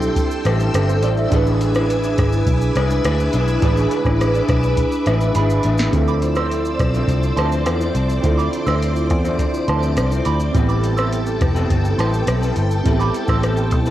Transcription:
Already playing: picked electric bass B1, clean electric guitar G3 C4 E4 A4, synth keys D4 E4 G4 A4, string machine A4 G5 C6 E6
0.02 shaker
0.16 kick, closed hi-hat, shaker
0.31 shaker
0.44 picked electric bass A1, clean electric guitar G3 C4 E4 A4, cross-stick, closed hi-hat, shaker
0.60 shaker
0.73 picked electric bass G1, clean electric guitar G3 C4 E4 A4, synth keys A4, cross-stick, closed hi-hat, shaker
0.89 synth keys C5, shaker
1.02 picked electric bass A1, clean electric guitar G3 C4 E4 A4, synth keys D5, closed hi-hat, shaker
1.17 synth keys E5, shaker
1.30 picked electric bass A1, clean electric guitar A2 D3 G#3 D4 E4 B4, synth keys D4 E4 G#4, string machine B4 G#5 D6, kick, closed hi-hat, shaker
1.35 synth keys B4
1.47 shaker
1.61 closed hi-hat, shaker
1.75 clean electric guitar G#3 D4 E4 B4, cross-stick, shaker
1.90 closed hi-hat, shaker
2.03 clean electric guitar G#3 D4 E4 B4, shaker
2.18 picked electric bass G#1, kick, cross-stick, closed hi-hat, shaker
2.32 shaker
2.46 picked electric bass B1, kick, closed hi-hat, shaker
2.61 shaker
2.75 picked electric bass C2, clean electric guitar G#3 D4 E4 B4, cross-stick, closed hi-hat, shaker
2.90 shaker
3.04 picked electric bass D2, clean electric guitar G#3 D4 E4 B4, cross-stick, closed hi-hat, shaker
3.20 shaker
3.33 picked electric bass B1, clean electric guitar G#3 D4 E4 B4, closed hi-hat, shaker
3.48 shaker
3.60 picked electric bass A1, clean electric guitar A2 D3 G#3 D4 E4 B4, synth keys D4 E4 G#4, kick, closed hi-hat, shaker
3.65 synth keys B4
3.77 shaker
3.91 closed hi-hat, shaker
4.04 picked electric bass A1, clean electric guitar G#3 D4 E4 B4, kick, cross-stick, shaker
4.21 cross-stick, closed hi-hat, shaker
4.34 clean electric guitar G#3 D4 E4 B4, shaker
4.49 picked electric bass B1, kick, cross-stick, closed hi-hat, shaker
4.63 shaker
4.77 kick, closed hi-hat, shaker
4.92 shaker
5.06 picked electric bass A1, clean electric guitar G#3 D4 E4 B4, synth keys E5, cross-stick, closed hi-hat, shaker
5.21 shaker
5.35 picked electric bass G#1, clean electric guitar G#3 D4 E4 B4, synth keys B5, closed hi-hat, shaker
5.50 shaker
5.63 picked electric bass A1, clean electric guitar G#3 D4 E4 B4, closed hi-hat, shaker
5.78 snare, shaker
5.91 picked electric bass D2, clean electric guitar D3 F3 C4 E4, synth keys C4 E4 F4, string machine C5 D5 D6 E6, kick, closed hi-hat, shaker
5.96 synth keys A4
6.08 synth bell B5 D6, shaker
6.22 closed hi-hat, shaker
6.35 clean electric guitar F3 C4 E4, synth bell C6 E6, cross-stick, shaker
6.51 closed hi-hat, shaker
6.65 shaker
6.79 picked electric bass B1, kick, cross-stick, closed hi-hat, shaker
6.94 clean electric guitar D3 F3 C4 E4, shaker
7.08 picked electric bass C2, kick, closed hi-hat, shaker
7.23 shaker
7.37 picked electric bass D2, clean electric guitar D3 F3 C4 E4, synth bell A5 C6, cross-stick, closed hi-hat, shaker
7.52 shaker
7.66 picked electric bass E2, cross-stick, closed hi-hat, shaker
7.80 clean electric guitar F3 C4 E4, shaker
7.95 picked electric bass C2, closed hi-hat, shaker
8.09 shaker
8.21 picked electric bass D2, clean electric guitar D3 F3 C4, synth keys C4 E4 F4, kick, closed hi-hat, shaker
8.25 clean electric guitar E4, synth keys A4
8.37 synth bell B5 D6, shaker
8.53 closed hi-hat, shaker
8.66 picked electric bass D2, clean electric guitar F3 C4 E4, synth bell C6 E6, cross-stick, shaker
8.82 closed hi-hat, shaker
8.96 shaker
9.10 picked electric bass E2, kick, closed hi-hat, shaker
9.24 clean electric guitar D3 F3 C4 E4, shaker
9.39 kick, closed hi-hat, shaker
9.54 shaker
9.68 picked electric bass D2, clean electric guitar D3 F3 C4 E4, synth bell A5 C6, cross-stick, closed hi-hat, shaker
9.83 shaker
9.97 picked electric bass C2, cross-stick, closed hi-hat, shaker
10.11 clean electric guitar F3 C4 E4, shaker
10.25 picked electric bass D2, synth bell B5 D6, closed hi-hat, shaker
10.40 shaker
10.52 picked electric bass A1, clean electric guitar G3 C4 E4, synth keys C4 E4 G4, string machine A4 G5 A5, kick, closed hi-hat, shaker
10.56 synth keys B3, clean electric guitar B4
10.69 synth bell B5 D6, shaker
10.84 closed hi-hat, shaker
10.97 clean electric guitar G3 C4 E4, synth bell C6 E6, cross-stick, shaker
11.13 closed hi-hat, shaker
11.27 shaker
11.41 picked electric bass F1, kick, cross-stick, closed hi-hat, shaker
11.55 clean electric guitar A2 E3 G3 C4 E4 B4, shaker
11.70 picked electric bass G1, kick, closed hi-hat, shaker
11.85 shaker
11.98 picked electric bass A1, clean electric guitar G3 C4 E4 B4, synth bell A5 C6, cross-stick, closed hi-hat, shaker
12.14 shaker
12.27 picked electric bass B1, cross-stick, closed hi-hat, shaker
12.42 clean electric guitar G3 C4 E4 B4, shaker
12.56 picked electric bass G1, closed hi-hat, shaker
12.71 shaker
12.83 picked electric bass A1, clean electric guitar G3 C4 E4 B4, synth keys C4 E4 G4, kick, closed hi-hat, shaker
12.89 synth keys B3
12.99 synth bell B5 D6, shaker
13.14 closed hi-hat, shaker
13.28 picked electric bass A1, clean electric guitar G3 C4 E4, synth bell C6 E6, kick, cross-stick, shaker
13.43 cross-stick, closed hi-hat, shaker
13.57 shaker
13.71 picked electric bass B1, kick, closed hi-hat, shaker
13.86 clean electric guitar C4 E4 B4, shaker

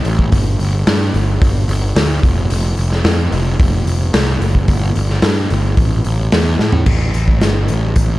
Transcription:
0.05 picked electric bass A1, open hi-hat
0.19 kick
0.32 picked electric bass G1, kick, open hi-hat
0.59 picked electric bass G1, open hi-hat
0.87 picked electric bass G2, snare, open hi-hat
1.14 picked electric bass G1, open hi-hat
1.42 picked electric bass G1, kick, open hi-hat
1.68 picked electric bass G1, open hi-hat
1.96 picked electric bass D2, snare, open hi-hat
2.23 picked electric bass F1, kick, open hi-hat
2.50 picked electric bass F1, open hi-hat
2.77 picked electric bass F1, open hi-hat
2.92 snare
3.04 picked electric bass F2, snare, open hi-hat
3.32 picked electric bass F1, open hi-hat
3.60 picked electric bass F1, kick, open hi-hat
3.86 picked electric bass F1, open hi-hat
4.13 picked electric bass C2, snare, open hi-hat
4.40 picked electric bass F#1, open hi-hat
4.55 kick
4.68 picked electric bass G1, kick, open hi-hat
4.95 picked electric bass G1, open hi-hat
5.09 snare
5.22 picked electric bass G2, snare, open hi-hat
5.50 picked electric bass G1, open hi-hat
5.77 picked electric bass A1, kick, open hi-hat
6.04 picked electric bass A1, open hi-hat
6.32 picked electric bass E2, snare, open hi-hat
6.59 picked electric bass A2, snare
6.72 floor tom
6.86 picked electric bass A1, kick, crash
7.13 picked electric bass A1, closed hi-hat
7.28 kick
7.41 picked electric bass G1, snare, closed hi-hat
7.68 picked electric bass A1, closed hi-hat
7.96 picked electric bass A1, kick, closed hi-hat

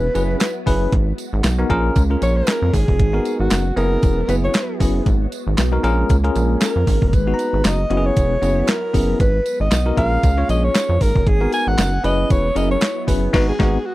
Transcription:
Already playing: string machine F#3 B3 E4, alto saxophone B4
0.15 analog synth bass F#1, tine electric piano C#4 E4 G#4 B4, closed hi-hat, tambourine
0.40 snare, clap, closed hi-hat, tambourine
0.66 analog synth bass F#1, tine electric piano C#4 E4 G#4 B4, kick, open hi-hat, tambourine
0.92 analog synth bass G#1, string machine G#3 F#4, kick, closed hi-hat
1.18 closed hi-hat, tambourine
1.33 analog synth bass G#1
1.44 analog synth bass B1, snare, clap, closed hi-hat, tambourine
1.59 tine electric piano B3 D#4 F#4 A#4
1.70 analog synth bass A#1, string machine A#3 C#4, tine electric piano C#4 F4 G#4 A#4, kick, closed hi-hat
1.96 analog synth bass C#2, kick, closed hi-hat, tambourine
2.10 tine electric piano C#4 F4 G#4 A#4
2.22 analog synth bass A#1, alto saxophone C#5, closed hi-hat, tambourine
2.37 alto saxophone A#4
2.47 snare, clap, closed hi-hat, tambourine
2.62 analog synth bass F2
2.73 analog synth bass G#1, alto saxophone G#4, kick, open hi-hat, tambourine
2.88 analog synth bass F1, kick
2.99 analog synth bass G#1, string machine B3 F#4, kick, closed hi-hat
3.13 tine electric piano B3 D#4 F#4 A#4
3.25 closed hi-hat, tambourine
3.40 analog synth bass G#1, alto saxophone F#4
3.50 analog synth bass F#1, snare, clap, closed hi-hat, tambourine
3.76 analog synth bass F#1, string machine F#3 E4, tine electric piano B3 C#4 E4 G#4, alto saxophone A#4, closed hi-hat, tambourine
4.02 analog synth bass E1, kick, closed hi-hat, tambourine
4.28 analog synth bass F#1, tine electric piano B3 C#4 E4 G#4, alto saxophone B4, closed hi-hat, tambourine
4.44 alto saxophone C#5
4.54 snare, clap, closed hi-hat, tambourine
4.80 analog synth bass F#1, tine electric piano B3 C#4 E4 G#4, kick, open hi-hat, tambourine
5.06 analog synth bass G#1, string machine G#3 F#4, kick, closed hi-hat, tambourine
5.32 closed hi-hat, tambourine
5.47 analog synth bass G#1
5.58 analog synth bass B1, snare, clap, closed hi-hat, tambourine
5.72 tine electric piano B3 D#4 F#4 A#4
5.83 analog synth bass A#1, string machine A#3 C#4, tine electric piano C#4 F4 G#4 A#4, closed hi-hat, tambourine
6.09 analog synth bass C#2, kick, closed hi-hat, tambourine
6.24 tine electric piano C#4 F4 G#4 A#4, closed hi-hat
6.35 analog synth bass A#1, closed hi-hat, tambourine
6.61 alto saxophone A#4, snare, clap, closed hi-hat, tambourine
6.76 analog synth bass F2
6.87 analog synth bass G#1, kick, open hi-hat, tambourine
7.02 analog synth bass F1, kick
7.08 alto saxophone A#4
7.13 analog synth bass G#1, string machine B3 F#4, alto saxophone B4, kick, closed hi-hat, tambourine
7.27 tine electric piano B3 D#4 F#4 G#4
7.34 tine electric piano A#5
7.39 closed hi-hat, tambourine
7.53 analog synth bass G#1
7.64 analog synth bass F#1, alto saxophone D#5, snare, clap, closed hi-hat, tambourine
7.90 analog synth bass F#1, string machine F#3 E4, tine electric piano B3 C#4 E4 F#4, closed hi-hat
7.97 tine electric piano G#4
8.06 alto saxophone C#5
8.16 analog synth bass E1, kick, closed hi-hat, tambourine
8.42 analog synth bass F#1, tine electric piano B3 C#4 E4 G#4, closed hi-hat, tambourine
8.67 alto saxophone A#4, snare, clap, closed hi-hat, tambourine
8.93 analog synth bass F#1, tine electric piano B3 C#4 E4 G#4, kick, open hi-hat, tambourine
9.20 analog synth bass G#1, string machine G#3 F#4, alto saxophone B4, kick, closed hi-hat, tambourine
9.46 closed hi-hat, tambourine
9.60 analog synth bass G#1, alto saxophone D#5
9.71 analog synth bass B1, snare, clap, closed hi-hat, tambourine
9.86 tine electric piano B3 D#4 F#4 A#4
9.97 analog synth bass A#1, string machine A#3 C#4, tine electric piano C#4 F4 G#4 A#4, alto saxophone F5, kick, closed hi-hat, tambourine
10.23 analog synth bass C#2, kick, closed hi-hat, tambourine
10.37 tine electric piano C#4 F4 G#4 C#5
10.49 analog synth bass A#1, alto saxophone D#5, closed hi-hat, tambourine
10.65 alto saxophone C#5
10.74 snare, clap, closed hi-hat, tambourine
10.89 analog synth bass F2
11.01 analog synth bass G#1, alto saxophone A#4, kick, open hi-hat, tambourine
11.15 analog synth bass F1, kick
11.27 analog synth bass G#1, string machine B3 F#4, alto saxophone G#4, kick, closed hi-hat
11.40 tine electric piano B3 D#4 F#4 A#4
11.52 alto saxophone G#5, closed hi-hat, tambourine
11.67 analog synth bass G#1, alto saxophone F#5
11.78 analog synth bass F#1, snare, clap, closed hi-hat, tambourine
12.04 analog synth bass F#1, string machine F#3 E4, tine electric piano C#4 E4 G#4 B4, alto saxophone D#5, closed hi-hat, tambourine
12.30 analog synth bass E1, alto saxophone C#5, kick, closed hi-hat, tambourine
12.56 analog synth bass F#1, tine electric piano C#4 E4 G#4 A#4, alto saxophone D#5, closed hi-hat, tambourine
12.71 alto saxophone C#5
12.81 snare, clap, closed hi-hat, tambourine
13.07 analog synth bass F#1, tine electric piano C#4 E4 G#4 B4, kick, open hi-hat, tambourine
13.33 analog synth bass G#1, string machine G#3 F#4, tine electric piano B3 D#4 F#4, alto saxophone B4, kick, snare, crash
13.49 alto saxophone G#4
13.59 analog synth bass G#1, tine electric piano B3 D#4 F#4, kick, snare
13.86 alto saxophone F#4

